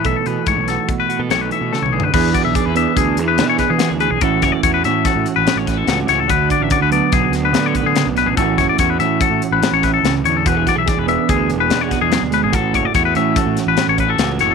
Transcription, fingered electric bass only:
\new Staff \with { instrumentName = "Fingered electric bass" } { \clef bass \time 5/4 \key a \major \tempo 4 = 144 b,,16 r16 b,16 r16 gis,16 b,,8 r4 b,16 b,,8 r16 b,16 r16 b,,8 r16 | e,8 r16 b,,16 r16 e,8 r16 d,8 e,8 e8 r16 e8 d,8 b,,16 | a,,8 fis,,16 r16 e,8 a,8 r16 a,16 r16 a,,16 r16 a,,8. cis,8 cis,8 | d,8 r16 a,,16 r16 d,8 r16 b,,8 d,8 d8 r16 d8 b,,8 a,,16 |
a,,8 fis,,16 r16 e,8 a,8 r16 a,16 r16 a,,16 r16 a,,8. cis,8 e,8 | e,,8 r16 b,,16 r16 e,,8 r16 d,8 e,,8 e,8 r16 e,8 d,8 gis,,16 | a,,8 fis,,16 r16 e,8 a,8 r16 a,16 r16 a,,16 r16 a,,8. cis,8 fis,,8 | }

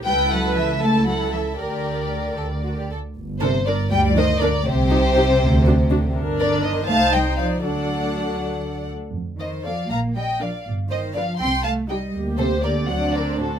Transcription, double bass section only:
\new Staff \with { instrumentName = "Double bass section" } { \clef bass \time 6/8 \key g \minor \tempo 4. = 80 cis,2. | d,4. d,4 r8 | g,,4. d,4. | c,4. d,4. |
g,,4. c,4. | d,2~ d,8 r8 | f,4. bes,,4. | g,,4. c,4. |
d,4. d,4. | }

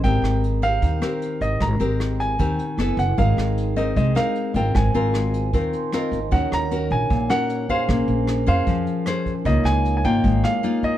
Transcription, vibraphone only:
\new Staff \with { instrumentName = "Vibraphone" } { \time 4/4 \key aes \major \tempo 4 = 153 << { r1 | r1 | r1 | r2 r8 c'''8 ees''4 |
r1 | r1 | r1 | } \\ { <c' bes' bes''>1~ | <c' bes' bes''>2. <fes' a' ces'' aes''>4 | <ees' aes' g''>1 | <f' bes' c''>1 |
<ees' bes' des'' ges''>1 | <des' bes' c'' aes''>1 | <ees' bes' des'' f''>1 | } >> }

